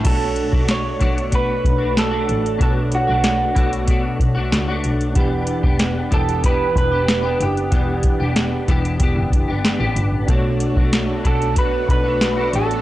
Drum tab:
CC |x---------------|----------------|----------------|----------------|
HH |x-x-x-xxx-x-x-xx|x-x-x-xxx-x-x-xx|x-x-x-xxx-x-x-xx|x-x-x-xxx-x-x-x-|
SD |----o-------o---|----o-------o---|----o-------o---|----o-------o---|
BD |o--o--o-o-o-----|o-----o-o-o-----|o--o--o-o-o-----|o-o---o-o-o-----|

CC |----------------|
HH |x-x-x-xxx-x-x-xx|
SD |----o-------o---|
BD |o--o--o-o-o-----|